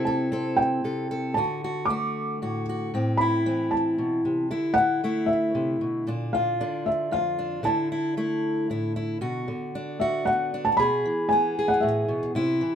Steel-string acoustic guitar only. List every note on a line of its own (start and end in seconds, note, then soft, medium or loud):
0.00 0.83 C3 medium
0.00 0.31 C4 soft
0.00 1.34 E4 soft
0.07 0.32 A4 medium
0.32 1.33 C4 soft
0.32 0.84 A4 medium
0.84 1.33 C3 soft
0.84 1.11 A4 soft
1.11 1.37 A4 soft
1.37 2.93 D3 medium
1.37 1.63 F#4 medium
1.64 1.89 F#4 soft
1.89 4.01 A3 soft
1.89 2.41 F#4 medium
2.42 2.93 A2 soft
2.42 2.68 F#4 soft
2.69 2.91 F#4 soft
2.94 3.98 A2 medium
2.94 3.45 C4 soft
3.21 4.50 E4 soft
3.46 4.47 E3 soft
3.46 4.47 C4 soft
3.98 4.24 B2 soft
4.25 4.51 C3 soft
4.51 6.59 D3 medium
4.51 4.77 E4 medium
4.78 5.03 E4 medium
5.04 6.05 A3 medium
5.04 6.08 E4 medium
5.55 5.81 C3 soft
5.81 6.07 B2 soft
6.07 6.60 A#2 medium
6.07 6.60 D4 soft
6.35 7.11 F4 medium
6.60 7.62 D3 medium
6.60 7.38 D4 soft
7.11 7.61 F2 soft
7.11 7.62 F4 medium
7.39 7.67 D4 soft
7.63 9.47 D3 medium
7.63 7.90 E4 medium
7.92 8.16 E4 medium
8.17 9.19 A3 soft
8.17 8.70 E4 medium
8.70 9.21 A2 soft
8.70 8.95 E4 medium
8.96 9.21 E4 soft
9.21 9.47 B2 medium
9.21 10.00 F#4 medium
9.48 10.79 D3 medium
9.75 10.53 D4 medium
10.01 10.76 F#4 medium
10.27 10.76 B3 medium
10.54 10.76 D4 soft
10.79 11.05 B2 medium
10.79 11.57 G#4 medium
11.05 12.32 E3 medium
11.32 12.36 B3 soft
11.59 12.33 G#4 medium
11.83 12.08 A2 medium
12.08 12.35 B2 medium
12.35 12.61 C3 medium
12.35 12.75 E4 medium
12.61 12.75 E3 medium